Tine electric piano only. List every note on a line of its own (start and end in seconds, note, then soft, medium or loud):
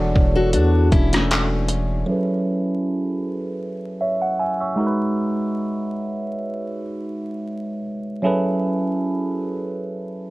0.00 2.09 E3 medium
0.00 2.09 D4 medium
0.00 2.10 F#4 medium
0.00 2.09 G#4 medium
0.00 2.09 A4 medium
0.00 2.09 C#5 medium
0.00 0.63 D5 medium
2.06 4.72 F#3 medium
2.06 4.73 C#4 medium
2.06 4.73 E4 medium
2.06 4.74 G#4 medium
2.06 4.74 A4 medium
2.11 4.74 B4 medium
4.01 4.21 C#5 soft
4.01 4.20 E5 medium
4.22 4.38 F#5 medium
4.39 4.59 E5 medium
4.39 4.59 G#5 medium
4.60 4.97 C#5 soft
4.60 4.96 E5 medium
4.76 7.80 G#3 medium
4.76 7.81 D#4 medium
4.76 7.81 F#4 medium
4.80 4.85 A#4 medium
4.87 7.85 B4 medium
8.22 10.30 F#3 medium
8.22 10.30 C#4 medium
8.22 10.30 E4 medium
8.22 10.30 G#4 medium
8.22 10.30 A4 medium
8.27 10.30 B4 medium